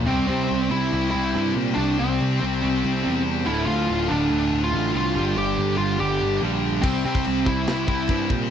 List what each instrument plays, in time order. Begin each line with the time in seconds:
0.06 picked electric bass C2, overdriven electric guitar C3 G3 C4, lead electric guitar C4, distorted electric guitar G4 C5
0.16 distorted electric guitar G4 C5
0.23 lead electric guitar C4, distorted electric guitar G4 C5
0.29 picked electric bass C3, distorted electric guitar G4 C5
0.39 distorted electric guitar G4 C5
0.47 picked electric bass C2, distorted electric guitar G4 C5
0.54 distorted electric guitar G4 C5
0.62 distorted electric guitar G4 C5
0.70 picked electric bass C2, overdriven electric guitar C3 G3 C4, lead electric guitar E4, distorted electric guitar G4 C5
0.77 distorted electric guitar G4 C5
0.84 distorted electric guitar G4 C5
0.93 picked electric bass C2, distorted electric guitar C3 G3 C4 G4 C5
1.01 distorted electric guitar G4 C5
1.08 lead electric guitar E4, distorted electric guitar G4 C5
1.14 picked electric bass C2, distorted electric guitar G4 C5
1.24 distorted electric guitar G4 C5
1.31 distorted electric guitar G4 C5
1.35 picked electric bass G2, overdriven electric guitar C3 G3 C4, distorted electric guitar G4
1.40 distorted electric guitar C5
1.45 distorted electric guitar G4 C5
1.54 picked electric bass A#2, distorted electric guitar G4 C5
1.61 distorted electric guitar G4 C5
1.68 distorted electric guitar G4 C5
1.74 picked electric bass C2, overdriven electric guitar C3, lead electric guitar D4, distorted electric guitar G4
1.78 overdriven electric guitar G3 C4, distorted electric guitar C5
1.86 distorted electric guitar G4 C5
1.93 distorted electric guitar G4 C5
1.99 picked electric bass C2, lead electric guitar C4, distorted electric guitar G4 C5
2.08 distorted electric guitar G4 C5
2.16 distorted electric guitar G4 C5
2.21 picked electric bass C2, distorted electric guitar G4 C5
2.32 distorted electric guitar G4 C5
2.39 picked electric bass C2, overdriven electric guitar C3 G3 C4, distorted electric guitar G4 C5
2.46 distorted electric guitar G4 C5
2.54 distorted electric guitar G4 C5
2.62 picked electric bass C2, distorted electric guitar C3 G3 C4 G4 C5
2.70 distorted electric guitar G4 C5
2.77 distorted electric guitar G4 C5
2.84 picked electric bass C2, distorted electric guitar G4 C5
2.93 distorted electric guitar G4 C5
3.00 overdriven electric guitar C3 G3, distorted electric guitar G4 C5
3.05 picked electric bass E2, overdriven electric guitar C4, distorted electric guitar G4 C5
3.15 distorted electric guitar G4 C5
3.23 distorted electric guitar G4 C5
3.31 distorted electric guitar G4 C5
3.39 distorted electric guitar G4 C5
3.45 picked electric bass D1, overdriven electric guitar D2 A2 D3, distorted electric guitar A3 F4, lead electric guitar E4
3.55 distorted electric guitar A3 F4
3.62 distorted electric guitar A3 F4
3.66 picked electric bass D2, lead electric guitar F4
3.70 distorted electric guitar A3 F4
3.77 distorted electric guitar A3 F4
3.85 distorted electric guitar A3 F4
3.89 picked electric bass D1, distorted electric guitar A3
3.93 distorted electric guitar F4
4.00 distorted electric guitar A3 F4
4.08 picked electric bass D1, overdriven electric guitar D2 A2 D3, distorted electric guitar A3 F4, lead electric guitar D4
4.16 distorted electric guitar A3 F4
4.23 distorted electric guitar A3 F4
4.29 picked electric bass D1, distorted electric guitar D2 A2 D3 A3 F4
4.38 distorted electric guitar A3 F4
4.46 distorted electric guitar A3 F4
4.52 picked electric bass D1, distorted electric guitar A3 F4
4.61 distorted electric guitar A3 F4, lead electric guitar F4
4.68 overdriven electric guitar D2, distorted electric guitar A3 F4
4.73 picked electric bass A1, overdriven electric guitar A2 D3, distorted electric guitar A3 F4
4.84 distorted electric guitar A3 F4
4.91 picked electric bass C2, distorted electric guitar A3 F4
4.97 distorted electric guitar A3 F4, lead electric guitar F4
5.07 distorted electric guitar A3 F4
5.14 picked electric bass G1, overdriven electric guitar G2 D3 G3, distorted electric guitar D4 G4
5.23 distorted electric guitar D4 G4
5.30 distorted electric guitar D4 G4
5.37 picked electric bass G1, distorted electric guitar D4 G4, lead electric guitar G4
5.46 distorted electric guitar D4 G4
5.54 distorted electric guitar D4 G4
5.58 picked electric bass G1, distorted electric guitar D4 G4
5.69 distorted electric guitar D4 G4
5.76 picked electric bass G1, overdriven electric guitar G2 D3 G3, distorted electric guitar D4 G4, lead electric guitar F4
5.84 distorted electric guitar D4 G4
5.92 distorted electric guitar D4 G4
5.98 picked electric bass G1, distorted electric guitar G2 D3 G3 D4 G4, lead electric guitar G4
6.07 distorted electric guitar D4 G4
6.14 distorted electric guitar D4 G4
6.21 picked electric bass G1, distorted electric guitar D4 G4
6.29 distorted electric guitar D4 G4
6.37 overdriven electric guitar G2, distorted electric guitar D4 G4
6.42 picked electric bass A#1, overdriven electric guitar D3 G3, distorted electric guitar D4 G4
6.52 distorted electric guitar D4 G4
6.59 distorted electric guitar D4 G4
6.67 distorted electric guitar D4 G4
6.76 distorted electric guitar D4 G4
6.82 picked electric bass C2, overdriven electric guitar C3 G3 C4, lead electric guitar C4, distorted electric guitar G4 C5, kick, crash, china
6.94 distorted electric guitar G4 C5
7.01 distorted electric guitar G4 C5
7.05 picked electric bass C3, lead electric guitar C4, distorted electric guitar G4 C5
7.15 distorted electric guitar G4 C5, kick
7.24 picked electric bass C2, distorted electric guitar G4 C5, china
7.32 distorted electric guitar G4 C5
7.40 distorted electric guitar G4 C5
7.46 picked electric bass C2, overdriven electric guitar C3 G3 C4, lead electric guitar E4, distorted electric guitar G4 C5, kick
7.54 distorted electric guitar G4 C5
7.63 distorted electric guitar C3 G4 C5
7.67 picked electric bass C2, distorted electric guitar G3 C4 C5, snare, china
7.71 distorted electric guitar G4
7.79 distorted electric guitar G4 C5
7.87 picked electric bass C2, lead electric guitar E4, distorted electric guitar G4 C5, kick
7.95 distorted electric guitar G4 C5
8.03 distorted electric guitar G4 C5
8.08 picked electric bass G2, overdriven electric guitar C3 G3 C4, distorted electric guitar G4 C5, kick, china
8.18 distorted electric guitar G4 C5
8.26 distorted electric guitar G4 C5, kick
8.30 picked electric bass A#2, distorted electric guitar G4
8.34 distorted electric guitar C5
8.42 distorted electric guitar G4 C5